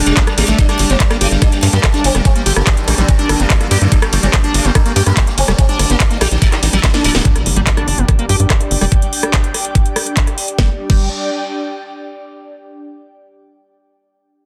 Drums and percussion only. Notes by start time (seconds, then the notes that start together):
0.06 closed hi-hat
0.17 kick, clap, closed hi-hat, ride
0.27 cross-stick, closed hi-hat
0.38 open hi-hat, ride
0.48 closed hi-hat
0.58 kick, closed hi-hat, ride
0.69 cross-stick, closed hi-hat
0.79 open hi-hat, ride
0.90 closed hi-hat
1.00 kick, clap, closed hi-hat, ride
1.11 cross-stick, closed hi-hat
1.21 open hi-hat, ride
1.31 closed hi-hat
1.42 kick, cross-stick, closed hi-hat, ride
1.52 closed hi-hat
1.63 open hi-hat, ride
1.73 closed hi-hat
1.84 kick, cross-stick, clap, closed hi-hat, ride
1.94 closed hi-hat
2.04 open hi-hat, ride
2.15 cross-stick, closed hi-hat
2.25 kick, closed hi-hat, ride
2.36 closed hi-hat
2.46 open hi-hat, ride
2.56 cross-stick, closed hi-hat
2.67 kick, clap, closed hi-hat, ride
2.77 closed hi-hat
2.88 cross-stick, open hi-hat, ride
2.98 closed hi-hat
3.08 kick, closed hi-hat, ride
3.19 closed hi-hat
3.29 cross-stick, open hi-hat, ride
3.40 closed hi-hat
3.50 kick, clap, closed hi-hat, ride
3.61 cross-stick, closed hi-hat
3.71 open hi-hat, ride
3.81 closed hi-hat
3.92 kick, closed hi-hat, ride
4.02 cross-stick, closed hi-hat
4.13 open hi-hat, ride
4.23 closed hi-hat
4.34 kick, cross-stick, clap, closed hi-hat, ride
4.44 closed hi-hat
4.54 open hi-hat, ride
4.65 closed hi-hat
4.75 kick, cross-stick, closed hi-hat, ride
4.86 closed hi-hat
4.96 open hi-hat, ride
5.06 cross-stick, closed hi-hat
5.17 kick, clap, closed hi-hat, ride
5.27 closed hi-hat
5.38 open hi-hat, ride
5.48 cross-stick, closed hi-hat
5.59 kick, closed hi-hat, ride
5.69 closed hi-hat
5.79 cross-stick, open hi-hat, ride
5.90 closed hi-hat
6.00 kick, clap, closed hi-hat, ride
6.11 closed hi-hat
6.21 cross-stick, open hi-hat, ride
6.31 closed hi-hat
6.42 kick, closed hi-hat, ride
6.52 cross-stick, clap, closed hi-hat
6.63 open hi-hat, ride
6.73 closed hi-hat
6.83 kick, snare, clap, closed hi-hat, ride
6.94 snare, closed hi-hat
7.04 open hi-hat, ride
7.15 snare, open hi-hat
7.25 kick, closed hi-hat
7.36 cross-stick, closed hi-hat
7.46 open hi-hat
7.56 closed hi-hat
7.67 kick, clap, closed hi-hat
7.77 cross-stick, closed hi-hat
7.88 open hi-hat
7.98 closed hi-hat
8.08 kick, cross-stick, closed hi-hat
8.19 closed hi-hat
8.29 open hi-hat
8.40 closed hi-hat
8.50 kick, cross-stick, clap, closed hi-hat
8.61 closed hi-hat
8.71 open hi-hat
8.81 cross-stick, open hi-hat
8.92 kick, closed hi-hat
9.02 closed hi-hat
9.13 open hi-hat
9.23 cross-stick, closed hi-hat
9.34 kick, clap, closed hi-hat
9.44 closed hi-hat
9.54 cross-stick, open hi-hat
9.65 closed hi-hat
9.75 kick, closed hi-hat
9.86 closed hi-hat
9.96 cross-stick, open hi-hat
10.06 closed hi-hat
10.17 kick, clap, closed hi-hat
10.27 cross-stick, closed hi-hat
10.38 open hi-hat
10.48 closed hi-hat
10.59 kick, snare
10.90 kick, crash